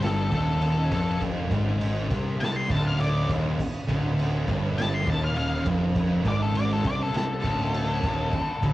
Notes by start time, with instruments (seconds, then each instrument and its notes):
Already playing: picked electric bass G1, distorted electric guitar G2
0.02 lead electric guitar A4, snare, ride
0.31 picked electric bass D#1, distorted electric guitar D#2, lead electric guitar A4, kick, ride
0.62 ride
0.91 picked electric bass F1, distorted electric guitar F2, lead electric guitar A4, kick, ride
1.21 kick, ride
1.50 picked electric bass G#1, distorted electric guitar G#2, kick, ride
1.81 ride
2.09 picked electric bass C2, distorted electric guitar C3, kick, ride
2.40 lead electric guitar A5, snare, ride
2.56 lead electric guitar C6
2.69 picked electric bass D1, distorted electric guitar D2, lead electric guitar A5, kick, ride
2.87 lead electric guitar F5
3.00 lead electric guitar D5, ride
3.28 picked electric bass D#1, distorted electric guitar D#2, kick, ride
3.59 kick, crash
3.88 picked electric bass D1, distorted electric guitar D2, kick, ride
4.19 ride
4.46 picked electric bass G1, distorted electric guitar G2, kick, ride
4.78 lead electric guitar A5, snare, ride
4.94 lead electric guitar C6
5.05 picked electric bass D#1, distorted electric guitar D#2, kick, ride
5.10 lead electric guitar A5
5.24 lead electric guitar F5
5.36 lead electric guitar F5, ride
5.65 picked electric bass F1, distorted electric guitar F2, kick, ride
5.96 kick, ride
6.24 picked electric bass G#1, distorted electric guitar G#2, lead electric guitar D5, kick, ride
6.42 lead electric guitar A4
6.55 lead electric guitar D5, ride
6.73 lead electric guitar A4
6.84 picked electric bass C2, distorted electric guitar C3, lead electric guitar D5, kick, ride
7.03 lead electric guitar A4
7.14 lead electric guitar A4, snare, ride
7.44 picked electric bass D1, distorted electric guitar D2, kick, ride
7.74 ride
8.03 picked electric bass D#1, distorted electric guitar D#2, kick, ride
8.33 kick, crash
8.61 picked electric bass D1, distorted electric guitar D2, kick, ride